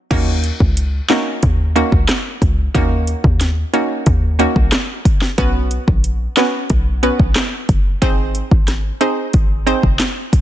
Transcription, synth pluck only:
0.11 A#3 C#4 D#4 F#4
1.10 A#3 C#4 D#4 F#4
1.76 A#3 C#4 D#4 F#4
2.74 A#3 C#4 D#4 F#4
3.73 A#3 C#4 D#4 F#4
4.39 A#3 C#4 D#4 F#4
5.38 B3 C#4 F#4 B4
6.37 B3 C#4 F#4 B4
7.03 B3 C#4 F#4 B4
8.02 C4 D#4 G#4 C5
9.01 C4 D#4 G#4 C5
9.66 C4 D#4 G#4 C5

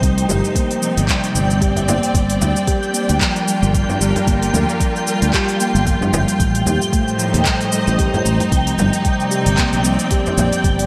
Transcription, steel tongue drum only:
0.03 G3
0.29 G4
0.55 A#3
0.82 F3
1.09 G3
1.35 G3
1.61 G4
1.88 A#3
2.14 G3
2.40 G3
2.68 G4
2.94 A#3
3.21 F3
3.48 G3
3.74 G3
4.00 G4
4.27 A#3
4.54 F3
4.81 G3
5.07 G3
5.34 G4
5.60 A#3
5.87 F3
6.40 G3
6.66 G4
6.93 A3
7.19 F3
7.46 G3
7.72 G3
7.99 G4
8.25 A3
8.52 F3
8.78 G3
9.05 G3
9.31 G4
9.58 A#3
9.84 F3
10.11 G4
10.37 F3
10.64 G4

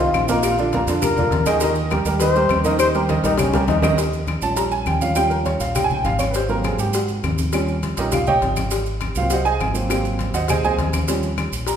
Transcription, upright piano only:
0.00 D#3 D#4 F4
0.29 A#2 A#3 A#4
0.59 D3 D4 F4
0.74 A#2 A#3 A#4
0.88 D3 D4 F4
1.17 D3 D4 F4
1.46 D#3 D#4 D#5
1.62 D#3 D#4 D#5
1.91 G3 G4 A#4
2.06 G3 G4 A#4
2.21 D#3 D#4 D#5
2.36 G3 G4 A#4
2.65 D#3 D#4 D#5
2.95 G3 G4 A#4
3.09 D#3 D#4 D#5
3.24 G3 G4 A#4
3.54 G3 G4 A#4
3.82 D#3 D#4 D#5
4.42 F3 G3 C#4 A5
4.56 A#5
4.72 G#5
4.87 G5
5.01 F3 G3 C#4 F5
5.15 F3 G3 C#4 G5
5.30 A#4
5.46 C#5
5.61 F5
5.75 G5
5.84 G#5
5.94 G5
6.05 F5
6.19 C#5
6.31 B4
6.35 C5
6.49 F#3 A#3 C4 A#4
6.64 G#4
6.79 G4
6.95 F#4
7.53 F3 G3 C#4
7.98 F3 G3 C#4 D#4 G4 A#4 D#5
8.14 F4 F5
8.27 G4 C#5 D#5 G5
9.17 F#3 A#3 C4 F4 F5
9.32 F#4 C5 D#5 F#5
9.45 G#4 C5 D#5 G#5
9.74 F#3 A#3 C4
9.90 F#3 A#3 C4
10.34 F#4 C5 D#5 F#5
10.50 G#4 C5 D#5 G#5
10.64 F#3 A#3 C4 G#4 C5 D#5 G#5
11.08 F3 G3 C#4
11.68 A#5

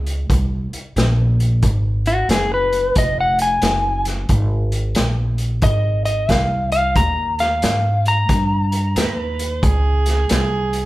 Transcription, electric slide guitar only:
2.07 F#4
2.31 G#4
2.54 B4
2.98 D#5
3.21 F#5
3.42 G#5
5.64 D#5
6.05 D#5
6.31 F5
6.72 F5
6.96 A#5
7.40 F5
8.08 A#5

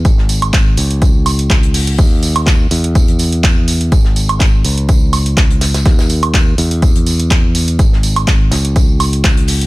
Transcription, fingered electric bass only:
0.05 G#1
0.77 C#2
1.99 D#2
2.71 E2
3.92 G#1
4.65 C#2
5.86 D#2
6.58 E2
7.79 G#1
8.52 C#2

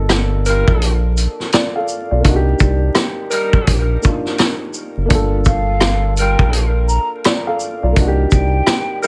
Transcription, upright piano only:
Already playing: A#3 D4 F4 A4
1.54 F4 D5
1.76 A4 F5
2.11 F4 D5
2.20 A#3 D4
2.26 D#4 F#4
2.36 G4
4.01 A#3 D4 D#4
4.06 F4
5.06 A#3 D4
5.12 F4 A4
7.25 F4 D5
7.47 A4 F5
7.83 F4 D5
7.92 A#3 D4
7.98 D#4 F#4
8.07 G4

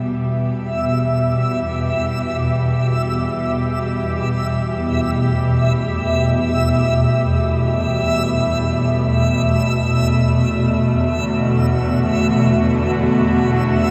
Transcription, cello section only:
Already playing: E3 G3 B3 G4
5.03 A3
9.57 E2
10.71 D3
11.26 F#4
11.38 B3

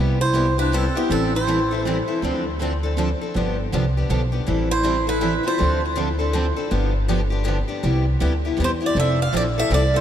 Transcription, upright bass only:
Already playing: C2
1.10 A1
2.23 D2
3.35 G1
3.73 C2
4.09 B1
4.48 A1
5.61 D2
6.71 G1
7.83 C2
8.21 D2
8.59 E2
8.95 F1
9.33 A#1
9.70 C2

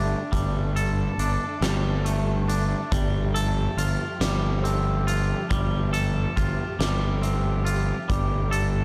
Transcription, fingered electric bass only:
Already playing: G1
0.32 G1
1.18 G1
1.61 G1
2.92 G1
3.77 G1
4.21 G1
5.51 G1
6.37 G1
6.79 G1
8.10 G1

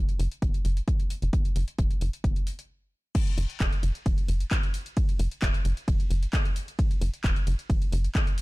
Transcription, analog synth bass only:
0.19 F#1
0.42 F#1
0.65 F#1
1.22 F#1
1.56 F#1
1.79 E1
2.01 F#1
2.24 F#1
3.38 F#1
3.60 E1
3.83 F#1
4.06 F#1
4.28 F#1
5.19 F#1
5.42 E1
5.65 F#1
5.88 F#1
6.10 F#1
7.01 F#1
7.24 E1
7.47 F#1
7.70 F#1
7.92 F#1

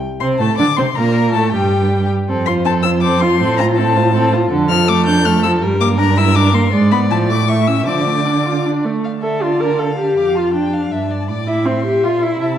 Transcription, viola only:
0.20 C4
0.40 A3
0.59 D4
0.78 C4
0.97 A#3
1.35 A3
1.54 G3
2.29 C4
2.47 F4
2.65 C4
2.84 F4
3.03 C4
3.22 F4
3.41 C4
3.59 F4
3.78 C4
3.97 F4
4.15 C4
4.33 F4
4.51 D3
4.70 F3
4.89 A3
5.07 D4
5.25 A3
5.44 F3
5.62 G3
5.80 A#3
5.98 D4
6.17 E4
6.35 D4
6.53 A#3
6.72 G#3
6.92 B3
7.10 F3
7.30 A3
7.49 A3
7.68 C#4
7.87 F3
8.06 A3
8.26 D4
8.46 F4
8.66 D4
8.85 A3
9.23 A4
9.42 F4
9.60 A#4
9.79 A4
9.98 G4
10.36 F4
10.54 D4
11.47 E4
11.66 C4
11.84 G4
12.04 F4
12.22 E4

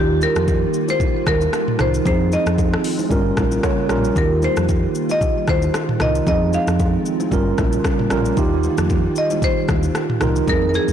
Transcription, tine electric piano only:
Already playing: D#3 D#4 F4 G4
1.78 D#3 D#4 F4 A#4
2.04 F3 C4 D#4 G#4
3.09 G3 C#4 F4 A#4
3.64 C#5
3.89 G3 C#4 F4 A#4
4.15 D#3 D#4 F4 G4
5.99 D#3 D#4 F4 A#4
6.26 F3 C4 D#4 G#4
7.31 G3 C#4 F4 A#4
8.10 G3 C#4 F4 A#4
8.36 D#3 D#4 F4 G4
10.20 D#3 D#4 F4 A#4
10.46 F3 C4 D#4 G#4

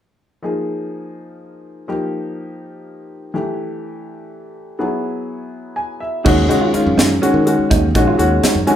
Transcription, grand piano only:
0.43 F3 A#3 D#4 G#4
1.88 F3 A#3 D#4 G4
3.34 E3 A3 D4 G4
4.79 F#3 B3 E4 G#4
5.76 G#5
6.00 E5
6.24 D#3 G#3 C#4 F#4
6.48 D#3 G#3 C#4 F#4
6.73 D#3 G#3 C#4 F4
7.22 D#3 G#3 C#4 F#4
7.46 D#3 G#3 C#4 F#4
7.94 D#3 G#3 C#4 F#4
8.17 D#3 G#3 C#4 F#4
8.67 D#3 G#3 C#4 F#4 G#5

